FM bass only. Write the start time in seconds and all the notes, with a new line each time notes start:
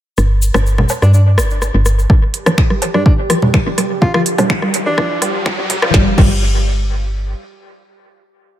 0.18 G1
0.54 G1
1.02 G2
1.38 G1
1.74 G1
2.10 G1
2.46 G1
2.94 G2
3.30 G1
3.66 G1
4.02 G1
4.38 G1
4.86 G2
5.22 G1
5.58 G1
5.94 G1
6.18 G1